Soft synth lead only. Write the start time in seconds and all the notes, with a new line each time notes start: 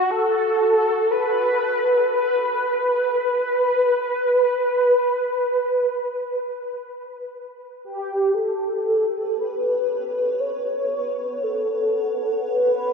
Already playing: F#4
0.10 A4
1.11 B4
2.15 B4
7.85 G4
8.34 A4
9.40 B4
10.40 C#5
11.43 A4
12.49 B4